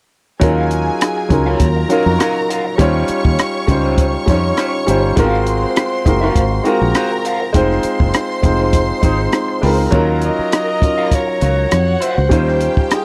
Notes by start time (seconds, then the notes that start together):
0.40 D#2 F#3 C#4 D#4 F4 F#4 G#4 A#4 C#5 F5 G#5, kick, closed hi-hat
0.71 closed hi-hat
0.87 muted clean electric guitar stroke
1.01 muted clean electric guitar stroke, cross-stick, closed hi-hat
1.17 muted clean electric guitar stroke
1.29 C#2 F#3 C#4 D#4 F4 A#4, kick, closed hi-hat
1.46 F#3 C#4 D#4 F4 F#4 A#4 C#5 F5
1.59 D#2 A#4 A#5, kick, closed hi-hat
1.76 muted clean electric guitar stroke
1.89 F#3 C#4 D#4 F4 F#4 A#4 C#5 F5, closed hi-hat
2.06 F2, muted clean electric guitar stroke
2.19 F#4 C#5 F5, cross-stick, closed hi-hat
2.35 muted clean electric guitar stroke
2.49 F#4 C#5 F5, closed hi-hat
2.65 muted clean electric guitar stroke
2.78 D#2 G3 C#4 D#4 F4 G4 C5 C#5 C#6, kick, closed hi-hat
3.08 muted fingered electric bass stroke, closed hi-hat
3.25 D#2, muted clean electric guitar stroke, kick
3.38 muted clean electric guitar stroke, cross-stick, closed hi-hat
3.54 muted clean electric guitar stroke
3.67 C#2 G3 C#4 D#4 F4 C5, kick, closed hi-hat
3.84 C#4 G4 C5
3.98 C#5 C#6, kick, closed hi-hat
4.13 muted clean electric guitar stroke
4.26 F2 G3 C#4 D#4 F4 G4 C5 C#5, kick, closed hi-hat
4.44 muted clean electric guitar stroke
4.57 C#4 G4 C5, cross-stick, closed hi-hat
4.74 muted clean electric guitar stroke
4.86 G1 G3 C#4 D#4 F4 G4 C5, closed hi-hat
5.03 muted clean electric guitar stroke
5.16 G#1 G#3 B3 F4 F#4 A#4 C5 F5 C6, kick, closed hi-hat
5.24 C4
5.34 cross-stick
5.47 closed hi-hat
5.63 muted clean electric guitar stroke
5.76 muted clean electric guitar stroke, cross-stick, closed hi-hat
5.92 muted clean electric guitar stroke
6.05 F#1 G#3 C4 F4 F#4 A#4, kick, closed hi-hat
6.21 G#3 C4 F4 F#4 A#4 C5 F5
6.36 G#1, kick, closed hi-hat
6.51 muted clean electric guitar stroke
6.64 G#3 C4 F4 F#4 A#4 C5 F5 A#5, closed hi-hat
6.81 A#1, muted clean electric guitar stroke
6.95 F#4 C5 F5, cross-stick, closed hi-hat
7.11 muted clean electric guitar stroke
7.25 F#4 C5 F5, closed hi-hat
7.41 muted clean electric guitar stroke
7.53 F1 G#3 C4 D#4 F4 G#4 C5 C6, kick, closed hi-hat
7.71 cross-stick
7.83 muted fingered electric bass stroke, closed hi-hat
8.00 F#1, muted clean electric guitar stroke, kick
8.14 muted clean electric guitar stroke, cross-stick, closed hi-hat
8.30 muted clean electric guitar stroke
8.42 F1 G#3 C4 D#4 F4 C5, kick, closed hi-hat
8.59 D#4 G#4 C5
8.73 kick, closed hi-hat
8.89 muted clean electric guitar stroke
9.01 G#1 G#3 C4 D#4 F4 G#4 C5, kick, closed hi-hat
9.19 muted clean electric guitar stroke
9.32 muted clean electric guitar stroke, cross-stick, closed hi-hat
9.48 muted clean electric guitar stroke
9.61 C#2 G#3 C4 D#4 F4 G#4 A#4 C5, open hi-hat
9.78 muted clean electric guitar stroke
9.91 D#2 F#3 C#4 D#4 F4 F#4 A#4 C#5 F5 A#5, kick, closed hi-hat
10.21 D#5, closed hi-hat
10.38 muted clean electric guitar stroke, muted fingered electric bass stroke
10.52 muted clean electric guitar stroke, cross-stick, closed hi-hat
10.68 muted clean electric guitar stroke
10.80 F#3 C#4 D#4 F4 A#4, kick, closed hi-hat
10.98 F#4 C#5 F5
11.12 C#5, kick, closed hi-hat
11.27 muted clean electric guitar stroke
11.41 C#2 F#4 C#5 F5, closed hi-hat
11.57 muted clean electric guitar stroke
11.70 F2 F#4 F#5, cross-stick, closed hi-hat
11.87 muted clean electric guitar stroke
12.01 F#4 C5 C#5 F5, closed hi-hat
12.17 C#2, muted clean electric guitar stroke
12.29 D#2 G3 C#4 D#4 F4 G4 C5 G5, kick, closed hi-hat
12.48 cross-stick
12.61 closed hi-hat
12.76 muted clean electric guitar stroke, muted fingered electric bass stroke, kick
12.90 G#4, muted clean electric guitar stroke, cross-stick, closed hi-hat